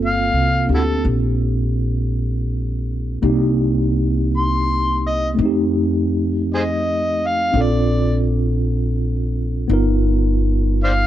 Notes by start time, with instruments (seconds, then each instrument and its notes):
Already playing: upright bass G1, tine electric piano A#3 C4 F4 A4
0.05 harmonica F5
0.32 upright bass C2
0.67 upright bass D2, tine electric piano C4 D4 G4
0.74 harmonica E4 F#4 A4
1.05 upright bass A#1
3.22 upright bass C2, tine electric piano A#3 C4 D#4 G4
4.37 harmonica C6
5.07 harmonica D#5
5.34 tine electric piano A3 C4
5.39 upright bass F2, tine electric piano D#4
5.45 tine electric piano G4
6.54 harmonica G#4 C5 D#5
7.26 harmonica F5
7.52 upright bass A#1, tine electric piano C4 D4 F4
7.57 tine electric piano A4, harmonica D5
9.68 upright bass G1, tine electric piano B3 D#4 F4
9.73 tine electric piano A#4
10.84 harmonica C5 D5 F5